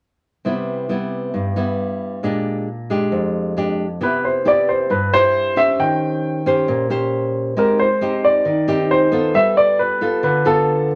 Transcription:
0.45 1.32 C3 soft
0.45 0.86 G3 soft
0.45 0.86 B3 soft
0.45 0.86 E4 soft
0.89 1.52 G3 soft
0.89 1.53 B3 soft
0.89 1.53 E4 soft
1.34 2.21 G2 medium
1.56 2.19 G3 medium
1.56 2.19 B3 medium
1.56 2.19 E4 medium
2.23 3.10 A#2 soft
2.23 2.67 G#3 soft
2.23 2.67 D4 soft
2.23 2.67 G4 medium
2.90 3.53 G#3 medium
2.90 3.53 D4 soft
2.90 3.53 G4 medium
3.12 3.99 F2 medium
3.57 3.85 G#3 soft
3.57 3.85 D4 soft
3.57 3.86 G4 medium
4.01 4.87 C3 medium
4.01 4.42 B3 soft
4.01 4.42 E4 soft
4.01 4.42 G4 soft
4.01 4.25 B4 medium
4.25 4.47 C5 medium
4.45 4.89 B3 soft
4.45 4.90 E4 soft
4.45 4.90 G4 soft
4.45 4.69 D5 medium
4.69 4.91 C5 medium
4.90 5.76 G2 medium
4.90 5.13 B4 medium
5.13 5.53 E4 medium
5.13 5.54 G4 medium
5.13 5.58 C5 loud
5.56 6.42 C#4 medium
5.56 6.42 G4 medium
5.56 6.42 C5 medium
5.56 5.80 E5 medium
5.79 6.66 D#3 medium
5.79 6.64 G5 medium
6.46 6.87 C#4 medium
6.46 6.87 G4 medium
6.46 6.87 C5 medium
6.68 7.54 A#2 medium
6.90 7.53 C#4 medium
6.90 7.53 G4 medium
6.90 7.54 C5 medium
7.57 8.43 G#3 medium
7.57 7.85 C4 soft
7.57 7.85 D#4 soft
7.57 7.86 G4 soft
7.57 7.78 A#4 medium
7.79 8.25 C5 medium
8.01 8.45 C4 soft
8.01 8.45 D#4 soft
8.01 8.46 G4 medium
8.24 8.92 D5 medium
8.45 9.32 D#3 medium
8.68 9.09 C4 medium
8.68 9.09 D#4 medium
8.68 9.09 G4 medium
8.91 9.36 C5 medium
9.12 9.97 B3 medium
9.12 9.97 F4 soft
9.12 9.98 A4 medium
9.34 10.21 G3 medium
9.34 9.55 E5 medium
9.57 9.80 D5 medium
9.79 10.20 B4 medium
10.01 10.42 B3 soft
10.01 10.42 F4 medium
10.01 10.42 A4 medium
10.23 10.95 D3 medium
10.23 10.44 B4 medium
10.45 10.95 B3 medium
10.45 10.95 F4 medium
10.45 10.95 A4 medium
10.45 10.87 A4 medium

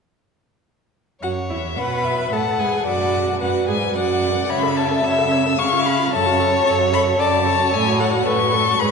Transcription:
1.22 1.51 F#2 medium
1.22 1.30 F#4 medium
1.22 1.79 C#5 medium
1.22 1.31 F#5 medium
1.50 1.79 E2 medium
1.50 1.58 E4 medium
1.50 1.80 E5 medium
1.77 2.31 B2 medium
1.77 2.34 B4 medium
1.77 2.06 F#5 medium
1.77 2.34 B5 medium
2.04 2.33 E5 medium
2.32 2.58 A2 medium
2.32 2.61 A4 medium
2.32 2.85 F#5 medium
2.32 2.61 A5 medium
2.59 2.67 G#2 medium
2.59 2.86 G#4 medium
2.59 2.85 G#5 medium
2.86 3.39 F#2 medium
2.86 3.40 F#4 medium
2.86 3.40 D5 medium
2.86 3.40 F#5 medium
3.40 3.48 F#2 medium
3.40 3.67 F#4 medium
3.40 3.97 B4 medium
3.40 3.67 F#5 medium
3.68 3.95 G#2 medium
3.68 3.76 G#4 medium
3.68 3.95 G#5 medium
3.95 4.48 F#2 medium
3.95 4.48 F#4 medium
3.95 4.52 D5 medium
3.95 4.51 F#5 medium
4.49 4.97 C#3 medium
4.49 4.64 C#5 medium
4.49 5.60 E5 medium
4.49 4.78 B5 loud
4.63 4.78 A4 medium
4.76 4.92 C#5 medium
4.76 5.06 A5 medium
4.91 5.04 A4 medium
5.04 5.52 C#3 medium
5.04 5.20 C#5 medium
5.04 5.60 E6 medium
5.18 5.33 A4 medium
5.31 5.47 C#5 medium
5.46 5.59 A4 medium
5.58 6.06 C#3 medium
5.58 5.74 G#4 medium
5.58 6.14 F5 medium
5.58 5.87 C#6 loud
5.73 5.87 F4 medium
5.85 6.00 G#4 medium
5.85 6.13 B5 loud
5.99 6.12 F4 medium
6.12 6.60 F#2 medium
6.12 6.28 A4 medium
6.12 7.20 C#5 loud
6.12 6.65 A5 loud
6.26 6.41 F#4 medium
6.40 6.54 A4 medium
6.53 6.65 F#4 medium
6.65 7.12 F#2 medium
6.65 6.80 A4 medium
6.65 6.74 A5 medium
6.79 6.93 F#4 medium
6.92 7.06 A4 medium
6.92 7.02 B5 loud
7.05 7.18 F#4 medium
7.18 7.66 F#2 medium
7.18 7.34 A4 medium
7.18 7.45 D5 medium
7.18 7.75 A5 loud
7.32 7.47 F#4 medium
7.45 7.60 A4 medium
7.45 8.24 C#5 medium
7.59 7.72 F#4 medium
7.72 8.20 A2 medium
7.72 7.87 A4 medium
7.72 8.01 G#5 loud
7.86 8.01 F#4 medium
7.99 8.14 A4 medium
7.99 8.28 F#5 medium
8.12 8.25 F#4 medium
8.26 8.73 A2 medium
8.26 8.41 A4 medium
8.26 8.54 B4 medium
8.26 8.81 C#6 loud
8.39 8.53 F#4 medium
8.52 8.67 A4 medium
8.52 8.82 A4 medium
8.66 8.79 F#4 medium
8.79 8.91 G#2 medium
8.79 8.91 G#4 medium
8.79 8.91 B4 medium
8.79 8.91 B5 loud

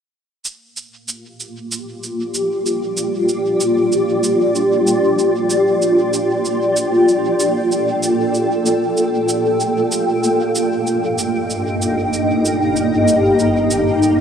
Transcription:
0.45 14.21 A#3 medium
0.45 cabasa soft
0.77 cabasa soft
0.97 7.08 G4 medium
1.05 11.76 F4 medium
1.05 cabasa soft
1.40 cabasa soft
1.72 cabasa soft
1.89 10.56 D5 medium
2.03 14.21 G5 medium
2.03 cabasa soft
2.34 cabasa soft
2.66 cabasa soft
2.97 cabasa soft
3.29 cabasa soft
3.61 cabasa soft
3.92 cabasa soft
4.24 cabasa soft
4.55 cabasa soft
4.87 cabasa soft
5.19 cabasa soft
5.50 cabasa soft
5.82 cabasa soft
6.14 cabasa soft
6.45 cabasa soft
6.77 cabasa soft
6.90 12.62 A4 medium
7.08 cabasa soft
7.40 cabasa soft
7.72 cabasa soft
8.03 cabasa soft
8.34 cabasa soft
8.66 cabasa soft
8.97 cabasa soft
9.29 cabasa soft
9.60 cabasa soft
9.92 cabasa soft
10.24 cabasa soft
10.55 14.21 G2 medium
10.55 cabasa soft
10.80 14.21 D#5 medium
10.87 14.21 G4 medium
10.87 cabasa soft
11.06 14.21 D#4 medium
11.18 cabasa soft
11.50 cabasa soft
11.82 cabasa soft
12.13 cabasa soft
12.45 cabasa soft
12.76 cabasa soft
13.08 cabasa soft
13.39 cabasa soft
13.71 cabasa soft
14.03 cabasa soft

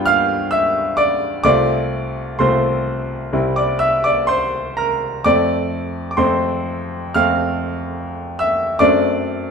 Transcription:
0.00 1.40 G2 medium
0.00 1.40 G3 soft
0.00 1.40 B3 soft
0.00 1.41 F4 soft
0.00 1.47 G5 medium
0.00 1.46 G6 loud
0.06 0.49 F5 medium
0.06 0.51 F6 loud
0.51 0.94 E5 medium
0.51 0.97 E6 medium
0.97 1.41 D5 medium
0.97 1.42 D6 medium
1.44 2.36 C2 medium
1.44 2.36 A3 soft
1.44 2.37 C4 soft
1.44 2.37 F4 soft
1.44 2.35 D5 medium
1.44 2.39 D6 medium
2.39 3.30 C2 soft
2.39 3.30 A3 soft
2.39 3.30 C4 soft
2.39 3.30 F4 soft
2.39 3.52 C5 medium
2.39 3.56 C6 medium
3.33 5.21 C2 soft
3.33 5.21 G3 soft
3.33 5.21 C4 soft
3.33 5.22 E4 soft
3.56 3.79 D5 soft
3.56 3.80 D6 medium
3.79 4.02 E5 medium
3.79 4.03 E6 medium
4.04 4.27 D5 medium
4.04 4.28 D6 medium
4.27 4.74 C5 medium
4.27 4.77 C6 medium
4.77 5.22 A#4 soft
4.77 5.25 A#5 medium
5.24 6.15 F2 soft
5.24 6.15 A3 soft
5.24 6.15 C4 soft
5.24 6.07 D5 medium
5.24 6.09 D6 medium
6.11 6.18 D6 soft
6.17 7.14 F2 soft
6.17 7.14 A3 soft
6.17 7.14 C4 soft
6.17 7.13 C5 medium
6.17 7.17 C6 medium
7.14 8.76 F2 soft
7.14 8.76 A3 soft
7.14 8.76 C4 soft
7.14 8.36 F5 medium
7.14 8.40 F6 medium
8.39 8.78 E5 medium
8.39 8.80 E6 medium
8.79 9.51 F#2 medium
8.79 9.51 A3 soft
8.79 9.51 C4 soft
8.79 9.51 D4 soft
8.79 9.51 D5 medium
8.79 9.51 D6 medium

